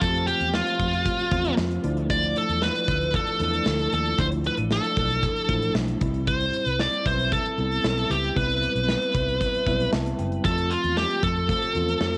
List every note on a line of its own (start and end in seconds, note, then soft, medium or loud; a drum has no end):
0.00 0.31 F2 medium
0.00 1.32 F3 medium
0.00 0.02 A3 medium
0.00 1.80 A3 medium
0.00 0.99 A3 medium
0.00 0.02 C4 medium
0.00 1.00 C4 medium
0.00 0.02 F4 medium
0.00 1.80 F4 medium
0.00 1.33 F4 medium
0.00 0.27 A4 medium
0.00 1.80 C5 medium
0.00 kick loud
0.00 closed hi-hat medium
0.09 1.03 G4 medium
0.14 closed hi-hat soft
0.27 0.54 G4 medium
0.27 closed hi-hat medium
0.40 0.60 E2 medium
0.40 closed hi-hat medium
0.54 1.54 F4 medium
0.54 snare medium
0.67 closed hi-hat medium
0.79 1.09 F2 medium
0.79 kick medium
0.79 closed hi-hat medium
0.93 closed hi-hat soft
1.06 kick medium
1.06 closed hi-hat medium
1.19 closed hi-hat soft
1.32 1.51 E2 medium
1.32 1.83 F3 medium
1.32 1.83 A3 medium
1.32 1.84 C4 medium
1.32 1.84 F4 medium
1.32 kick medium
1.32 closed hi-hat medium
1.45 closed hi-hat soft
1.57 1.78 F2 medium
1.57 snare loud
1.71 closed hi-hat soft
1.84 2.33 D2 medium
1.84 2.82 F3 medium
1.84 2.82 A3 medium
1.84 5.98 A3 medium
1.84 2.82 D4 medium
1.84 2.82 E4 medium
1.84 5.98 F4 medium
1.84 5.98 D5 medium
1.84 closed hi-hat medium
1.97 closed hi-hat soft
2.10 2.35 D5 loud
2.10 kick medium
2.10 closed hi-hat medium
2.23 closed hi-hat soft
2.36 2.63 A4 medium
2.36 closed hi-hat medium
2.49 2.69 E2 medium
2.49 closed hi-hat medium
2.62 3.16 B4 medium
2.62 snare medium
2.75 closed hi-hat soft
2.88 3.18 D2 medium
2.88 kick medium
2.88 closed hi-hat medium
3.01 closed hi-hat soft
3.14 3.93 A4 medium
3.14 kick medium
3.14 closed hi-hat medium
3.27 closed hi-hat soft
3.40 3.60 E2 medium
3.40 4.14 F3 medium
3.40 4.14 A3 medium
3.40 4.15 D4 medium
3.40 4.15 E4 medium
3.40 closed hi-hat medium
3.53 closed hi-hat medium
3.66 3.86 D2 medium
3.66 snare loud
3.79 closed hi-hat soft
3.92 4.12 D#2 medium
3.92 4.20 A4 medium
3.92 closed hi-hat medium
4.06 closed hi-hat soft
4.18 4.48 D2 medium
4.18 5.16 F3 medium
4.18 5.17 A3 medium
4.18 5.17 D4 medium
4.18 5.17 E4 medium
4.18 4.27 C5 medium
4.18 kick loud
4.18 closed hi-hat medium
4.32 closed hi-hat soft
4.44 4.54 B4 medium
4.44 closed hi-hat medium
4.57 4.77 A1 medium
4.57 closed hi-hat medium
4.71 5.72 A4 medium
4.71 snare medium
4.84 closed hi-hat medium
4.97 5.26 B1 medium
4.97 kick medium
4.97 closed hi-hat medium
5.10 closed hi-hat soft
5.23 kick medium
5.23 closed hi-hat medium
5.36 closed hi-hat soft
5.48 5.69 A1 medium
5.48 6.01 F3 medium
5.48 6.01 A3 medium
5.48 6.01 D4 medium
5.48 6.01 E4 medium
5.48 kick medium
5.48 closed hi-hat medium
5.62 closed hi-hat medium
5.75 5.95 B1 medium
5.75 snare loud
5.88 closed hi-hat soft
6.01 6.50 C2 medium
6.01 6.99 G3 medium
6.01 7.00 C4 medium
6.01 7.00 E4 medium
6.01 kick medium
6.01 closed hi-hat medium
6.14 closed hi-hat soft
6.27 6.67 C5 medium
6.27 kick medium
6.27 closed hi-hat medium
6.41 closed hi-hat medium
6.53 closed hi-hat medium
6.66 6.86 C2 medium
6.66 6.82 B4 medium
6.66 closed hi-hat medium
6.79 7.07 D5 medium
6.79 snare medium
6.93 closed hi-hat medium
7.06 7.35 B1 medium
7.06 10.15 C4 medium
7.06 10.15 B4 medium
7.06 7.33 C5 medium
7.06 10.15 E5 medium
7.06 kick medium
7.06 closed hi-hat medium
7.19 closed hi-hat soft
7.32 8.13 A4 medium
7.32 kick medium
7.32 closed hi-hat medium
7.45 closed hi-hat soft
7.58 7.78 C2 medium
7.58 8.31 G3 medium
7.58 8.32 B3 medium
7.58 8.32 C4 medium
7.58 8.32 E4 medium
7.58 closed hi-hat medium
7.71 closed hi-hat soft
7.84 8.04 B1 medium
7.84 snare loud
7.98 closed hi-hat soft
8.10 8.30 C#2 medium
8.10 8.35 G4 medium
8.10 closed hi-hat medium
8.24 closed hi-hat soft
8.35 8.66 C2 medium
8.35 9.34 G3 medium
8.35 9.34 B3 medium
8.35 9.34 C4 medium
8.35 9.34 E4 medium
8.35 9.89 B4 medium
8.35 kick loud
8.35 closed hi-hat medium
8.50 closed hi-hat medium
8.62 closed hi-hat medium
8.75 8.95 B1 medium
8.75 closed hi-hat medium
8.88 snare medium
9.02 closed hi-hat medium
9.14 9.44 C2 medium
9.14 kick medium
9.14 closed hi-hat medium
9.29 closed hi-hat soft
9.41 kick medium
9.41 closed hi-hat medium
9.54 closed hi-hat soft
9.66 9.86 B1 medium
9.66 10.40 G3 medium
9.66 10.40 B3 medium
9.66 10.40 C4 medium
9.66 10.41 E4 medium
9.66 9.91 E5 medium
9.66 kick medium
9.66 closed hi-hat medium
9.80 closed hi-hat medium
9.93 10.12 C2 medium
9.93 10.17 A5 medium
9.93 snare loud
10.06 closed hi-hat soft
10.19 10.38 F#1 medium
10.19 10.43 G5 medium
10.19 closed hi-hat medium
10.32 closed hi-hat soft
10.44 10.74 F2 loud
10.44 11.43 F3 medium
10.44 11.43 A3 medium
10.44 11.43 C4 medium
10.44 11.43 F4 medium
10.44 10.72 A4 loud
10.44 kick loud
10.44 closed hi-hat medium
10.58 closed hi-hat soft
10.71 10.97 F4 medium
10.71 closed hi-hat medium
10.84 11.04 E2 medium
10.84 closed hi-hat medium
10.97 11.22 G4 medium
10.97 snare medium
11.10 closed hi-hat soft
11.23 11.52 F2 loud
11.23 12.18 A4 medium
11.23 kick medium
11.23 closed hi-hat medium
11.36 closed hi-hat soft
11.49 12.18 A3 medium
11.49 12.18 F4 medium
11.49 12.18 C5 medium
11.49 kick medium
11.49 closed hi-hat medium
11.62 closed hi-hat soft
11.75 11.95 E2 medium
11.75 12.18 F3 medium
11.75 12.18 A3 medium
11.75 12.18 C4 medium
11.75 12.18 F4 medium
11.75 closed hi-hat medium
11.88 closed hi-hat medium
12.01 12.18 F2 medium
12.01 snare loud
12.14 closed hi-hat soft